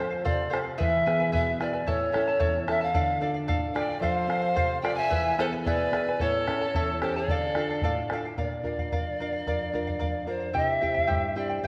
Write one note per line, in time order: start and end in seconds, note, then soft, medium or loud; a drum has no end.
0.00 0.24 F3 medium
0.00 0.42 C4 medium
0.00 0.42 F4 soft
0.00 0.12 A4 medium
0.00 0.42 A4 medium
0.00 0.10 C5 medium
0.00 0.23 C5 medium
0.10 0.24 C5 soft
0.10 0.24 F5 medium
0.25 0.78 C3 medium
0.25 0.49 A4 medium
0.25 0.49 C5 medium
0.25 0.51 D5 loud
0.25 0.50 F5 medium
0.25 bombo low medium
0.50 0.74 C4 soft
0.50 0.74 F4 soft
0.50 0.65 A4 medium
0.50 0.75 A4 soft
0.50 0.63 C5 medium
0.50 0.58 C5 medium
0.50 0.62 F5 medium
0.50 bombo rim medium
0.63 0.77 C5 soft
0.63 0.77 F5 soft
0.78 1.33 E3 medium
0.78 1.05 E4 medium
0.78 1.06 G#4 medium
0.78 1.05 B4 loud
0.78 1.04 E5 medium
0.78 1.30 E5 loud
0.78 1.05 G#5 medium
0.78 bombo low medium
1.05 1.50 B3 soft
1.05 1.20 E4 medium
1.05 1.50 E4 soft
1.05 1.50 G#4 medium
1.05 1.19 B4 medium
1.05 1.19 E5 medium
1.05 1.19 G#5 medium
1.05 bombo rim soft
1.20 1.31 E4 medium
1.20 1.32 B4 medium
1.20 1.32 G#5 medium
1.32 1.86 B2 medium
1.32 1.59 E4 medium
1.32 1.60 G#4 medium
1.32 1.60 B4 medium
1.32 1.59 E5 medium
1.32 1.60 G#5 medium
1.32 bombo low medium
1.60 1.82 B3 soft
1.60 1.73 E4 medium
1.60 1.82 E4 soft
1.60 1.82 G#4 medium
1.60 1.73 B4 medium
1.60 1.86 D5 medium
1.60 1.74 E5 medium
1.60 1.72 G#5 medium
1.60 bombo rim soft
1.73 1.86 E4 soft
1.73 1.87 B4 soft
1.73 1.87 G#5 medium
1.87 2.39 A2 medium
1.87 2.11 E4 medium
1.87 2.12 A4 medium
1.87 2.14 C#5 medium
1.87 2.65 C#5 loud
1.87 2.11 E5 medium
1.87 2.12 A5 medium
1.87 bombo low medium
2.12 2.58 C#4 medium
2.12 2.27 E4 medium
2.12 2.58 E4 medium
2.12 2.27 A4 medium
2.12 2.58 A4 medium
2.12 2.27 E5 medium
2.12 2.26 A5 medium
2.12 bombo rim medium
2.28 2.39 E4 soft
2.28 2.39 A4 medium
2.28 2.39 A5 medium
2.40 2.95 E2 medium
2.40 2.66 E4 medium
2.40 2.67 A4 medium
2.40 2.68 C#5 medium
2.40 2.66 E5 medium
2.40 2.67 A5 medium
2.40 bombo low medium
2.67 2.90 C#4 soft
2.67 2.81 E4 medium
2.67 2.90 E4 soft
2.67 2.80 A4 medium
2.67 2.91 A4 medium
2.67 2.81 E5 medium
2.67 2.82 E5 medium
2.67 2.80 A5 medium
2.67 bombo rim medium
2.81 2.94 E4 soft
2.81 2.93 A4 soft
2.81 3.33 F5 medium
2.81 2.95 A5 soft
2.94 3.48 D3 medium
2.94 3.20 A4 medium
2.94 3.20 D5 medium
2.94 3.20 F5 medium
2.94 bombo low medium
3.21 3.65 D4 soft
3.21 3.66 F4 soft
3.21 3.35 A4 medium
3.21 3.66 A4 medium
3.21 3.35 D5 medium
3.21 3.33 F5 medium
3.34 3.47 D5 soft
3.34 3.47 F5 medium
3.48 4.02 A2 medium
3.48 3.74 A4 medium
3.48 3.74 D5 medium
3.48 3.75 F5 loud
3.48 bombo low medium
3.75 3.97 D4 soft
3.75 3.98 F4 soft
3.75 3.89 A4 medium
3.75 3.98 A4 medium
3.75 3.89 D5 medium
3.75 4.01 D5 medium
3.75 3.88 F5 medium
3.75 3.99 G5 medium
3.75 bombo rim medium
3.89 4.01 D5 soft
3.89 4.02 F5 soft
4.00 4.55 F3 medium
4.00 4.28 A4 medium
4.00 4.80 C5 medium
4.00 4.28 C5 medium
4.00 4.79 F5 loud
4.00 4.29 F5 medium
4.00 bombo low medium
4.28 4.72 C4 medium
4.28 4.72 F4 soft
4.28 4.43 A4 soft
4.28 4.73 A4 medium
4.28 4.41 C5 medium
4.28 4.41 F5 medium
4.28 bombo rim soft
4.42 4.55 C5 medium
4.42 4.55 F5 medium
4.55 5.10 C3 medium
4.55 4.83 A4 medium
4.55 4.83 C5 medium
4.55 4.84 F5 medium
4.55 bombo low medium
4.81 5.06 C4 soft
4.81 5.06 F4 soft
4.81 4.98 A4 medium
4.81 5.06 A4 medium
4.81 4.97 C5 medium
4.81 4.97 D5 medium
4.81 4.93 G5 loud
4.81 bombo rim medium
4.85 4.96 F5 medium
4.94 5.10 F5 soft
4.94 5.34 G#5 loud
4.99 5.09 C5 soft
4.99 5.36 E5 medium
5.10 5.64 E3 medium
5.10 5.37 E4 loud
5.10 5.38 G#4 medium
5.10 5.38 B4 medium
5.10 5.37 E5 medium
5.10 5.38 G#5 medium
5.10 bombo low medium
5.38 5.82 B3 medium
5.38 5.52 E4 medium
5.38 5.82 E4 soft
5.38 5.82 G#4 medium
5.38 5.52 A4 medium
5.38 5.52 B4 medium
5.38 5.45 C5 medium
5.38 5.52 E5 medium
5.38 5.52 G#5 medium
5.38 bombo rim soft
5.53 5.66 E4 soft
5.53 5.66 B4 medium
5.53 5.66 G#5 medium
5.64 6.18 B2 medium
5.64 5.93 E4 medium
5.64 5.93 G#4 medium
5.64 6.22 B4 medium
5.64 5.93 B4 medium
5.64 6.23 D5 loud
5.64 5.92 E5 medium
5.64 5.93 G#5 medium
5.64 bombo low medium
5.92 6.14 B3 soft
5.92 6.15 E4 soft
5.92 6.07 E4 medium
5.92 6.15 G#4 medium
5.92 6.07 B4 medium
5.92 6.07 E5 medium
5.92 6.07 G#5 medium
5.92 bombo rim medium
6.09 6.20 E4 soft
6.09 6.21 B4 soft
6.09 6.21 G#5 soft
6.20 6.73 A2 medium
6.20 6.47 E4 medium
6.20 7.01 A4 medium
6.20 6.47 A4 medium
6.20 6.48 C#5 medium
6.20 7.00 C#5 medium
6.20 6.46 E5 medium
6.20 6.48 A5 medium
6.20 bombo low medium
6.47 6.91 C#4 soft
6.47 6.61 E4 medium
6.47 6.91 E4 soft
6.47 6.61 A4 medium
6.47 6.91 A4 medium
6.47 6.61 E5 medium
6.47 6.60 A5 medium
6.47 bombo rim soft
6.61 6.75 E4 medium
6.61 6.75 A4 medium
6.61 6.75 A5 medium
6.75 7.27 E2 medium
6.75 7.02 E4 medium
6.75 7.02 A4 medium
6.75 7.02 C#5 medium
6.75 7.01 E5 medium
6.75 7.02 A5 medium
6.75 bombo low medium
7.01 7.24 C#4 soft
7.01 7.24 E4 soft
7.01 7.16 E4 medium
7.01 7.17 G4 medium
7.01 7.24 A4 medium
7.01 7.16 A4 medium
7.01 7.18 C5 medium
7.01 7.15 E5 medium
7.01 7.15 A5 medium
7.01 bombo rim medium
7.15 7.29 E4 soft
7.15 8.10 A4 medium
7.15 7.28 A4 soft
7.15 8.11 D5 medium
7.15 7.29 A5 medium
7.28 7.81 D3 medium
7.28 7.55 A4 medium
7.28 7.57 D5 medium
7.28 7.57 F5 medium
7.28 bombo low medium
7.55 7.99 D4 medium
7.55 7.99 F4 medium
7.55 7.99 A4 medium
7.55 7.70 A4 medium
7.55 7.70 D5 medium
7.55 7.69 F5 medium
7.55 bombo rim soft
7.70 7.82 D5 soft
7.70 7.83 F5 medium
7.82 8.35 A2 medium
7.82 8.10 A4 medium
7.82 8.10 D5 medium
7.82 8.11 F5 loud
7.82 bombo low medium
8.10 8.33 D4 soft
8.10 8.32 F4 soft
8.10 8.33 A4 medium
8.10 8.25 A4 medium
8.10 8.25 D5 medium
8.10 8.24 F5 medium
8.10 bombo rim medium
8.25 8.37 D5 soft
8.25 8.37 F5 medium
8.37 8.90 A#2 medium
8.37 8.63 A#4 medium
8.37 10.23 D5 medium
8.37 8.64 D5 medium
8.37 8.65 F5 medium
8.37 bombo low medium
8.63 9.07 D4 soft
8.63 9.08 F4 soft
8.63 9.08 A#4 soft
8.63 8.78 A#4 medium
8.63 8.78 D5 medium
8.63 8.78 F5 medium
8.63 bombo low soft
8.78 8.91 D5 soft
8.78 8.92 F5 soft
8.78 bombo low soft
8.92 9.45 F2 medium
8.92 9.19 A#4 medium
8.92 9.19 D5 medium
8.92 9.19 F5 medium
8.92 bombo low medium
9.20 9.64 D4 soft
9.20 9.63 F4 soft
9.20 9.33 A#4 medium
9.20 9.64 A#4 soft
9.20 9.33 D5 medium
9.20 9.31 F5 medium
9.33 9.46 D5 soft
9.33 9.46 F5 soft
9.46 9.99 F2 medium
9.46 9.72 A#4 medium
9.46 9.73 D5 medium
9.46 9.74 F5 medium
9.46 bombo low medium
9.73 10.17 D4 soft
9.73 10.17 F4 soft
9.73 9.87 A#4 medium
9.73 10.18 A#4 medium
9.73 9.87 D5 medium
9.73 9.86 F5 medium
9.73 bombo low soft
9.87 9.99 D5 medium
9.87 9.99 F5 medium
9.87 bombo low soft
9.99 10.53 F2 medium
9.99 10.26 A#4 medium
9.99 10.26 D5 medium
9.99 10.27 F5 medium
9.99 bombo low medium
10.27 10.49 D4 soft
10.27 10.49 F4 soft
10.27 10.41 A#4 medium
10.27 10.49 A#4 soft
10.27 10.57 C5 medium
10.27 10.40 D5 medium
10.27 10.39 F5 medium
10.40 10.53 D5 soft
10.40 10.53 F5 soft
10.53 11.07 C3 medium
10.53 10.81 E4 medium
10.53 10.81 G4 medium
10.53 10.81 C5 medium
10.53 10.69 D#5 loud
10.53 10.80 E5 medium
10.53 10.82 G5 medium
10.53 bombo low medium
10.69 11.37 E5 loud
10.81 11.25 C4 medium
10.81 11.25 E4 soft
10.81 10.94 E4 medium
10.81 11.26 G4 medium
10.81 10.93 C5 medium
10.81 10.95 E5 medium
10.81 10.93 G5 medium
10.81 bombo low soft
10.94 11.06 E4 soft
10.94 11.07 C5 medium
10.94 11.06 G5 medium
10.94 bombo low medium
11.07 11.61 G2 medium
11.07 11.35 E4 medium
11.07 11.35 G4 medium
11.07 11.35 C5 medium
11.07 11.34 E5 medium
11.07 11.36 G5 medium
11.07 bombo low medium
11.35 11.67 C4 soft
11.35 11.49 E4 medium
11.35 11.67 E4 soft
11.35 11.67 G4 medium
11.35 11.49 C5 medium
11.35 11.62 D5 medium
11.35 11.49 E5 medium
11.35 11.48 G5 medium
11.49 11.63 E4 soft
11.49 11.63 C5 soft
11.49 11.63 G5 soft
11.63 11.67 G2 medium
11.63 11.67 E4 medium
11.63 11.67 G4 medium
11.63 11.67 C5 medium
11.63 11.67 E5 medium